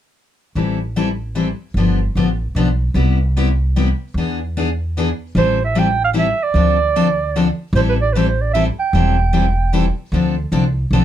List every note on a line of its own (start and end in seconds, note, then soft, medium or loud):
0.55 1.52 A1 medium
0.55 0.77 E3 medium
0.55 0.77 G3 medium
0.55 0.78 C4 medium
0.55 0.78 E4 medium
0.55 0.78 A4 medium
0.96 1.07 E3 medium
0.96 1.07 G3 medium
0.96 1.08 C4 medium
0.96 1.08 E4 medium
0.96 1.08 A4 medium
1.35 1.47 E3 medium
1.35 1.47 G3 medium
1.35 1.47 C4 medium
1.35 1.47 E4 medium
1.35 1.47 A4 medium
1.74 2.07 G1 medium
1.74 1.98 D3 medium
1.74 1.98 F3 medium
1.74 1.98 B3 medium
1.74 1.98 D4 medium
1.74 1.98 G4 medium
2.15 2.50 A1 medium
2.15 2.28 D3 medium
2.15 2.28 F3 medium
2.15 2.28 B3 medium
2.15 2.28 D4 medium
2.15 2.28 G4 medium
2.55 2.89 B1 medium
2.55 2.67 D3 medium
2.55 2.67 F3 medium
2.55 2.67 B3 medium
2.55 2.68 D4 medium
2.55 2.68 G4 medium
2.94 3.91 C2 medium
2.94 3.17 C3 medium
2.94 3.17 G3 medium
2.94 3.17 B3 medium
2.94 3.17 E4 medium
2.94 3.17 G4 medium
3.37 3.48 C3 medium
3.37 3.48 G3 medium
3.37 3.48 B3 medium
3.37 3.48 E4 medium
3.37 3.48 G4 medium
3.76 3.87 C3 medium
3.76 3.87 G3 medium
3.76 3.88 B3 medium
3.76 3.88 E4 medium
3.76 3.88 G4 medium
4.14 5.11 E2 medium
4.14 4.38 E3 medium
4.14 4.38 B3 medium
4.14 4.38 D4 medium
4.14 4.38 G#4 medium
4.57 4.68 E3 medium
4.57 4.68 B3 medium
4.57 4.68 D4 medium
4.57 4.68 G#4 medium
4.97 5.08 E3 medium
4.97 5.08 B3 medium
4.97 5.08 D4 medium
4.97 5.08 G#4 medium
5.35 6.31 A1 medium
5.35 5.57 E3 medium
5.35 5.57 G3 medium
5.35 5.58 C4 medium
5.35 5.58 E4 medium
5.35 5.58 A4 medium
5.35 5.60 C5 medium
5.65 5.80 E5 medium
5.75 5.87 E3 medium
5.75 5.87 G3 medium
5.75 5.87 C4 medium
5.75 5.87 E4 medium
5.75 5.87 A4 medium
5.75 6.02 G5 loud
6.04 6.10 F5 medium
6.13 6.26 E3 medium
6.13 6.26 G3 medium
6.13 6.26 C4 medium
6.13 6.26 E4 medium
6.13 6.26 A4 medium
6.19 6.45 E5 loud
6.43 7.61 D5 loud
6.54 7.50 D2 medium
6.54 6.77 D3 medium
6.54 6.77 F3 medium
6.54 6.76 C4 medium
6.54 6.77 D4 medium
6.54 6.77 A4 medium
6.96 7.07 D3 medium
6.96 7.07 F3 medium
6.96 7.07 C4 medium
6.96 7.07 D4 medium
6.96 7.07 A4 loud
7.36 7.46 D3 medium
7.36 7.46 F3 medium
7.36 7.47 C4 medium
7.36 7.47 D4 medium
7.36 7.47 A4 medium
7.73 8.69 A1 loud
7.73 7.96 E3 medium
7.73 7.96 G3 medium
7.73 7.96 C4 medium
7.73 7.97 E4 medium
7.73 7.97 A4 medium
7.73 7.81 C5 medium
7.89 7.95 B4 medium
8.02 8.14 D5 medium
8.13 8.26 E3 medium
8.13 8.26 G3 medium
8.13 8.26 C4 medium
8.13 8.27 E4 medium
8.13 8.26 A4 medium
8.13 8.19 B4 medium
8.17 8.28 C5 medium
8.28 8.43 C5 medium
8.41 8.53 D5 medium
8.54 8.65 E3 medium
8.54 8.65 G3 medium
8.54 8.66 C4 medium
8.54 8.65 E4 loud
8.54 8.66 A4 medium
8.54 8.65 E5 medium
8.80 9.94 G5 medium
8.93 9.88 E1 medium
8.93 9.15 E3 medium
8.93 9.15 G3 medium
8.93 9.15 C4 medium
8.93 9.15 E4 medium
8.93 9.15 A4 medium
9.33 9.44 E3 medium
9.33 9.44 G3 medium
9.33 9.44 C4 medium
9.33 9.45 E4 medium
9.33 9.45 A4 medium
9.73 9.84 E3 medium
9.73 9.84 G3 medium
9.73 9.84 C4 medium
9.73 9.84 E4 medium
9.73 9.85 A4 medium
10.12 10.44 D2 medium
10.12 10.34 D3 medium
10.12 10.34 F3 medium
10.12 10.34 C4 medium
10.12 10.35 D4 medium
10.12 10.35 A4 medium
10.52 10.86 C2 medium
10.52 10.63 D3 medium
10.52 10.63 F3 medium
10.52 10.64 C4 medium
10.52 10.64 D4 medium
10.52 10.64 A4 loud
10.91 11.04 B1 medium
10.91 11.04 D3 medium
10.91 11.04 F3 medium
10.91 11.04 C4 medium
10.91 11.04 D4 medium
10.91 11.04 A4 medium